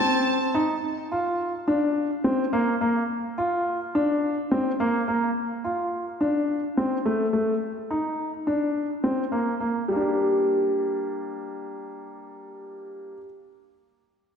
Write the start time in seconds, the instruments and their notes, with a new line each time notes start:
Already playing: upright piano C4, violin section A5
0.55 upright piano D#4
1.12 upright piano F4
1.68 upright piano D4
2.24 upright piano C4
2.53 upright piano A#3
2.81 upright piano A#3
3.38 upright piano F4
3.95 upright piano D4
4.51 upright piano C4
4.80 upright piano A#3
5.08 upright piano A#3
5.64 upright piano F4
6.21 upright piano D4
6.77 upright piano C4
7.05 upright piano A3
7.33 upright piano A3
7.91 upright piano D#4
8.47 upright piano D4
9.04 upright piano C4
9.32 upright piano A#3
9.60 upright piano A#3
9.88 upright piano G3 A#3
9.96 upright piano D4
10.01 upright piano G4